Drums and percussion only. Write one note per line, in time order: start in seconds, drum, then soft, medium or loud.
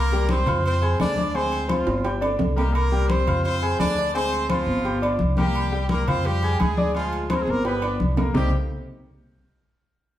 0.12 high conga soft
0.29 high conga loud
0.29 low agogo medium
0.46 high conga soft
0.46 low conga medium
0.46 low agogo loud
0.64 high conga soft
0.64 low agogo medium
0.82 high conga soft
0.82 low agogo medium
1.00 high conga medium
1.00 low timbale medium
1.00 low agogo loud
1.17 high conga medium
1.34 high conga soft
1.34 low agogo medium
1.52 high conga soft
1.52 low agogo medium
1.69 high conga loud
1.69 low agogo loud
1.87 high conga soft
1.87 high timbale medium
2.05 high conga soft
2.05 high timbale medium
2.05 low agogo medium
2.22 high conga soft
2.22 low timbale medium
2.22 low agogo loud
2.39 high conga medium
2.39 low timbale loud
2.58 low timbale medium
2.58 low agogo medium
2.75 high conga soft
2.75 low agogo loud
2.93 high conga soft
3.10 high conga loud
3.10 low agogo medium
3.27 high conga soft
3.27 low conga medium
3.27 low agogo loud
3.44 high conga soft
3.44 low agogo medium
3.62 high conga soft
3.62 low agogo medium
3.80 high conga medium
3.80 low timbale medium
3.80 low agogo loud
4.15 high conga soft
4.15 low agogo medium
4.32 high conga soft
4.32 low agogo medium
4.49 high conga loud
4.49 low agogo loud
4.66 high conga soft
4.85 high conga soft
4.85 low agogo medium
5.02 high conga soft
5.02 low agogo loud
5.19 high conga medium
5.37 high conga medium
5.37 low agogo medium
5.55 high conga soft
5.55 low agogo loud
5.72 high conga soft
5.89 high conga loud
5.89 low agogo medium
6.07 high conga soft
6.07 low conga medium
6.07 low agogo loud
6.25 high conga soft
6.25 low agogo medium
6.42 high conga soft
6.42 low agogo medium
6.60 high conga medium
6.60 low agogo loud
6.77 high conga medium
6.95 high conga soft
6.95 low agogo medium
7.12 high conga soft
7.12 low agogo medium
7.30 high conga loud
7.30 low agogo loud
7.47 high conga soft
7.65 high conga soft
7.65 high timbale medium
7.65 low agogo medium
7.82 high conga soft
7.82 low agogo loud
8.00 high conga medium
8.17 high conga medium
8.17 low timbale loud
8.17 low agogo medium
8.35 low conga loud
8.35 low timbale loud